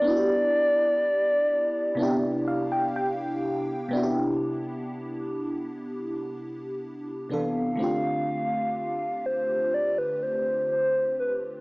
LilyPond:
<<
  \new Staff \with { instrumentName = "Soft synth lead" } { \time 4/4 \key c \major \tempo 4 = 62 d''2.~ d''8 r8 | r2. r8 f''8~ | f''4. c''8 d''16 b'16 c''8 c''8 b'8 | }
  \new Staff \with { instrumentName = "FM electric piano" } { \time 4/4 \key c \major << { r2 r8 f''16 g''16 g''4 | r1 | r1 | } \\ { <b d' e' fis' g'>2 <c b d' e' g'>2 | <c b d' e' fis' g'>2.~ <c b d' e' fis' g'>8 <c e b d' a'>8 | <d a c' d' f' g'>1 | } >> }
>>